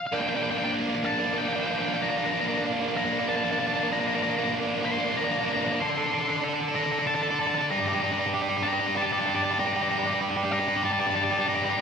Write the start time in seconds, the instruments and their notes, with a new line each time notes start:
0.07 lead electric guitar F5
0.13 overdriven electric guitar A#3 D4, lead electric guitar G5
0.20 overdriven electric guitar A#3 D4, lead electric guitar G5
0.28 overdriven electric guitar A#3 D4, lead electric guitar G5
0.35 overdriven electric guitar A#3 D4, lead electric guitar G5
0.42 overdriven electric guitar A#3 D4, lead electric guitar G5
0.50 overdriven electric guitar A#3 D4, lead electric guitar G5
0.58 overdriven electric guitar A#3 D4, lead electric guitar G5
0.64 overdriven electric guitar A#3 D4, lead electric guitar G5
0.73 overdriven electric guitar A#3 D4
0.81 overdriven electric guitar A#3 D4
0.87 overdriven electric guitar A#3 D4
0.95 overdriven electric guitar A#3 D4
1.03 overdriven electric guitar A#3 D4, lead electric guitar A5
1.10 overdriven electric guitar A#3 D4
1.19 overdriven electric guitar A#3 D4
1.26 overdriven electric guitar A#3 D4
1.33 overdriven electric guitar A#3 D4
1.38 overdriven electric guitar A#3 D4, lead electric guitar G5
1.45 overdriven electric guitar A#3 D4, lead electric guitar G5
1.53 overdriven electric guitar D4, lead electric guitar G5
1.57 overdriven electric guitar A#3, lead electric guitar G5
1.63 overdriven electric guitar A#3 D4, lead electric guitar G5
1.71 overdriven electric guitar A#3 D4, lead electric guitar G5
1.79 overdriven electric guitar A#3 D4, lead electric guitar G5
1.86 overdriven electric guitar A#3 D4, lead electric guitar G5
1.94 overdriven electric guitar A#3 D4, lead electric guitar G5
2.02 overdriven electric guitar A#3 D4, lead electric guitar A#5
2.09 overdriven electric guitar A#3 D4, lead electric guitar A#5
2.17 overdriven electric guitar A#3 D4, lead electric guitar A#5
2.24 overdriven electric guitar A#3 D4, lead electric guitar A#5
2.31 overdriven electric guitar A#3 D4, lead electric guitar A#5
2.40 overdriven electric guitar A#3 D4, lead electric guitar A#5
2.47 overdriven electric guitar A#3 D4, lead electric guitar A#5
2.54 overdriven electric guitar A#3, lead electric guitar A#5
2.59 overdriven electric guitar D4
2.65 overdriven electric guitar A#3 D4
2.73 overdriven electric guitar A#3 D4
2.80 overdriven electric guitar A#3 D4
2.88 overdriven electric guitar A#3 D4
2.96 overdriven electric guitar A#3 D4, lead electric guitar A#5
3.05 overdriven electric guitar A#3 D4
3.12 overdriven electric guitar A#3 D4
3.20 overdriven electric guitar A#3 D4
3.28 overdriven electric guitar A#3 D4, lead electric guitar A5
3.35 overdriven electric guitar A#3 D4, lead electric guitar A5
3.44 overdriven electric guitar A#3 D4, lead electric guitar A5
3.51 overdriven electric guitar A#3 D4, lead electric guitar A5
3.59 overdriven electric guitar A#3 D4, lead electric guitar A5
3.67 overdriven electric guitar A#3 D4, lead electric guitar A5
3.74 overdriven electric guitar A#3 D4, lead electric guitar A5
3.80 overdriven electric guitar A#3, lead electric guitar A5
3.84 overdriven electric guitar D4
3.92 overdriven electric guitar A#3 D4, lead electric guitar A#5
3.99 overdriven electric guitar A#3 D4, lead electric guitar A#5
4.07 overdriven electric guitar A#3 D4, lead electric guitar A#5
4.15 overdriven electric guitar A#3 D4, lead electric guitar A#5
4.22 overdriven electric guitar A#3 D4, lead electric guitar A#5
4.29 overdriven electric guitar A#3 D4, lead electric guitar A#5
4.37 overdriven electric guitar A#3 D4, lead electric guitar A#5
4.44 overdriven electric guitar A#3 D4, lead electric guitar A#5
4.53 overdriven electric guitar A#3 D4
4.60 overdriven electric guitar A#3 D4
4.67 overdriven electric guitar A#3 D4
4.75 overdriven electric guitar A#3 D4
4.82 overdriven electric guitar A#3 D4, lead electric guitar C6
4.91 overdriven electric guitar A#3 D4
4.98 overdriven electric guitar A#3 D4
5.05 overdriven electric guitar A#3 D4
5.12 overdriven electric guitar A#3
5.17 overdriven electric guitar D4, lead electric guitar A#5
5.21 overdriven electric guitar A#3 D4, lead electric guitar A#5
5.28 overdriven electric guitar A#3, lead electric guitar A#5
5.33 overdriven electric guitar A#3 D4
5.39 overdriven electric guitar D4, lead electric guitar A#5
5.43 overdriven electric guitar A#3, lead electric guitar A#5
5.49 overdriven electric guitar A#3 D4
5.53 overdriven electric guitar D4, lead electric guitar A#5
5.57 overdriven electric guitar A#3
5.61 overdriven electric guitar D4, lead electric guitar A#5
5.66 overdriven electric guitar A#3, lead electric guitar A#5
5.72 overdriven electric guitar A#3 D4, lead electric guitar A#5
5.80 overdriven electric guitar D4 A4, lead electric guitar C6
5.87 overdriven electric guitar D4 A4, lead electric guitar C6
5.95 overdriven electric guitar D4 A4, lead electric guitar C6
6.02 overdriven electric guitar D4, lead electric guitar C6
6.06 overdriven electric guitar A4
6.10 overdriven electric guitar D4 A4, lead electric guitar C6
6.18 overdriven electric guitar D4 A4, lead electric guitar C6
6.25 overdriven electric guitar D4, lead electric guitar C6
6.29 overdriven electric guitar A4, lead electric guitar C6
6.33 overdriven electric guitar D4 A4
6.41 overdriven electric guitar D4 A4
6.49 overdriven electric guitar D4
6.53 overdriven electric guitar D4 A4
6.61 overdriven electric guitar D4 A4
6.69 overdriven electric guitar D4 A4
6.75 overdriven electric guitar A4, lead electric guitar A#5
6.80 overdriven electric guitar D4 A4
6.87 overdriven electric guitar D4
6.92 overdriven electric guitar D4 A4
6.99 overdriven electric guitar D4 A4
7.07 overdriven electric guitar D4 A4, lead electric guitar A5
7.15 overdriven electric guitar D4 A4, lead electric guitar A5
7.22 overdriven electric guitar D4 A4, lead electric guitar A5
7.29 overdriven electric guitar D4 A4, lead electric guitar A5
7.36 overdriven electric guitar A4, lead electric guitar A5
7.41 overdriven electric guitar D4, lead electric guitar A5
7.47 overdriven electric guitar D4 A4, lead electric guitar A5
7.55 overdriven electric guitar D4 A4, lead electric guitar A5
7.61 overdriven electric guitar D4 A4
7.71 overdriven electric guitar D4 G4, lead electric guitar A#5
7.77 overdriven electric guitar D4 G4, lead electric guitar A#5
7.86 overdriven electric guitar D4 G4, lead electric guitar A#5
7.93 overdriven electric guitar D4 G4, lead electric guitar A#5
8.00 overdriven electric guitar D4 G4, lead electric guitar A#5
8.07 lead electric guitar A#5
8.12 overdriven electric guitar D4 G4, lead electric guitar A#5
8.18 overdriven electric guitar D4 G4, lead electric guitar A#5
8.26 overdriven electric guitar D4 G4
8.34 overdriven electric guitar D4 G4
8.42 overdriven electric guitar D4 G4
8.49 overdriven electric guitar D4 G4
8.57 overdriven electric guitar D4 G4
8.63 overdriven electric guitar D4 G4, lead electric guitar A#5
8.73 overdriven electric guitar D4 G4
8.80 overdriven electric guitar D4 G4
8.88 overdriven electric guitar D4 G4
8.96 overdriven electric guitar D4 G4, lead electric guitar A5
9.03 overdriven electric guitar D4 G4, lead electric guitar A5
9.12 overdriven electric guitar D4 G4, lead electric guitar A5
9.19 overdriven electric guitar D4 G4, lead electric guitar A5
9.26 overdriven electric guitar D4 G4, lead electric guitar A5
9.34 overdriven electric guitar D4 G4, lead electric guitar A5
9.43 overdriven electric guitar D4 G4, lead electric guitar A5
9.51 overdriven electric guitar D4 G4, lead electric guitar A5
9.59 overdriven electric guitar D4 G4, lead electric guitar A#5
9.66 overdriven electric guitar D4 G4, lead electric guitar A#5
9.73 overdriven electric guitar D4 G4, lead electric guitar A#5
9.81 overdriven electric guitar D4 G4, lead electric guitar A#5
9.89 overdriven electric guitar D4 G4, lead electric guitar A#5
9.96 overdriven electric guitar D4 G4, lead electric guitar A#5
10.04 overdriven electric guitar D4 G4, lead electric guitar A#5
10.11 overdriven electric guitar D4, lead electric guitar A#5
10.15 overdriven electric guitar G4
10.21 overdriven electric guitar D4 G4
10.29 overdriven electric guitar D4 G4
10.37 overdriven electric guitar D4 G4
10.43 overdriven electric guitar D4 G4
10.52 overdriven electric guitar D4 G4, lead electric guitar A#5
10.60 overdriven electric guitar D4 G4
10.68 overdriven electric guitar D4 G4
10.76 overdriven electric guitar D4 G4
10.83 overdriven electric guitar D4 G4, lead electric guitar A5
10.90 overdriven electric guitar D4 G4, lead electric guitar A5
10.99 overdriven electric guitar D4 G4, lead electric guitar A5
11.07 overdriven electric guitar D4 G4, lead electric guitar A5
11.14 overdriven electric guitar D4 G4, lead electric guitar A5
11.21 overdriven electric guitar D4 G4
11.25 lead electric guitar A5
11.30 overdriven electric guitar D4 G4, lead electric guitar A5
11.37 overdriven electric guitar D4 G4, lead electric guitar A5
11.46 overdriven electric guitar D4 G4, lead electric guitar A#5
11.54 overdriven electric guitar D4 G4, lead electric guitar A#5
11.62 overdriven electric guitar D4 G4
11.66 overdriven electric guitar D4, lead electric guitar A#5
11.70 overdriven electric guitar G4, lead electric guitar A#5
11.77 overdriven electric guitar D4